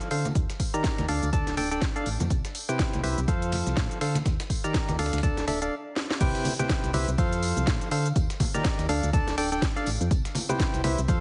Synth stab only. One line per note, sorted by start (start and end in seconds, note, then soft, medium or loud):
0.11 0.27 A4 medium
0.11 0.27 C5 medium
0.11 0.27 F5 medium
0.74 1.06 D#3 medium
0.74 1.06 D#4 medium
0.74 1.06 G4 medium
0.74 1.06 A#4 medium
0.74 1.06 D5 medium
0.74 1.06 A#5 medium
1.08 1.30 D4 medium
1.08 1.30 A4 medium
1.08 1.30 D5 medium
1.08 1.30 F5 loud
1.33 1.55 D4 medium
1.33 1.55 A4 medium
1.33 1.55 D5 medium
1.33 1.55 A5 loud
1.57 1.69 D4 medium
1.57 1.69 A4 medium
1.57 1.69 D5 medium
1.57 1.69 G5 loud
1.71 1.85 D4 loud
1.71 1.85 A4 medium
1.71 1.85 D5 medium
1.71 1.85 G5 loud
1.96 2.09 D4 medium
1.96 2.09 A4 medium
1.96 2.09 D5 medium
1.96 2.09 F5 medium
2.69 3.01 C3 medium
2.69 3.01 E4 medium
2.69 3.01 G4 medium
2.69 3.01 B4 medium
2.69 3.01 C5 medium
2.69 3.01 G5 loud
3.03 3.20 E4 medium
3.03 3.20 G4 medium
3.03 3.20 B4 medium
3.03 3.20 C5 medium
3.03 3.20 E5 medium
3.28 3.99 F3 loud
3.28 3.99 A4 medium
3.28 3.99 C5 medium
3.28 3.99 F5 loud
4.01 4.18 A4 medium
4.01 4.18 C5 medium
4.01 4.18 F5 medium
4.64 4.96 D#3 medium
4.64 4.96 D#4 medium
4.64 4.96 G4 medium
4.64 4.96 A#4 medium
4.64 4.96 D5 medium
4.64 4.96 A#5 medium
4.99 5.20 D4 medium
4.99 5.20 A4 medium
4.99 5.20 D5 medium
4.99 5.20 F5 loud
5.23 5.45 D4 medium
5.23 5.45 A4 medium
5.23 5.45 D5 medium
5.23 5.45 A5 loud
5.48 5.60 D4 medium
5.48 5.60 A4 medium
5.48 5.60 D5 medium
5.48 5.60 E5 medium
5.62 5.75 D4 medium
5.62 5.75 A4 medium
5.62 5.75 D5 medium
5.62 5.75 F5 medium
6.21 6.54 C3 loud
6.21 6.54 E4 medium
6.21 6.54 G4 medium
6.21 6.54 B4 medium
6.21 6.54 C5 medium
6.21 6.54 G5 loud
6.59 6.91 C3 medium
6.59 6.91 E4 medium
6.59 6.91 G4 medium
6.59 6.92 B4 medium
6.59 6.91 C5 medium
6.59 6.92 G5 loud
6.94 7.10 E4 medium
6.94 7.10 G4 medium
6.94 7.10 B4 medium
6.94 7.10 C5 medium
6.94 7.10 E5 medium
7.18 7.89 F3 loud
7.18 7.89 A4 medium
7.18 7.89 C5 medium
7.18 7.89 F5 loud
7.91 8.08 A4 medium
7.91 8.08 C5 medium
7.91 8.08 F5 loud
8.54 8.87 D#3 medium
8.54 8.87 D#4 medium
8.54 8.87 G4 medium
8.54 8.87 A#4 medium
8.54 8.87 D5 medium
8.54 8.87 A#5 loud
8.89 9.10 D4 medium
8.89 9.10 A4 medium
8.89 9.10 D5 medium
8.89 9.10 F5 loud
9.13 9.35 D4 medium
9.13 9.35 A4 medium
9.13 9.35 D5 medium
9.13 9.35 A5 loud
9.38 9.50 D4 medium
9.38 9.50 A4 medium
9.38 9.50 D5 medium
9.38 9.50 G5 loud
9.52 9.65 D4 loud
9.52 9.65 A4 medium
9.52 9.65 D5 medium
9.52 9.65 G5 loud
9.76 9.90 D4 medium
9.76 9.90 A4 medium
9.76 9.90 D5 medium
9.76 9.90 F5 medium
10.49 10.82 C3 medium
10.49 10.82 E4 medium
10.49 10.82 G4 medium
10.49 10.82 B4 medium
10.49 10.82 C5 medium
10.49 10.82 G5 loud
10.84 11.01 E4 medium
10.84 11.01 G4 medium
10.84 11.00 B4 medium
10.84 11.01 C5 medium
10.84 11.00 E5 medium
11.08 11.20 F3 loud
11.08 11.20 A4 medium
11.08 11.20 C5 medium
11.08 11.20 F5 loud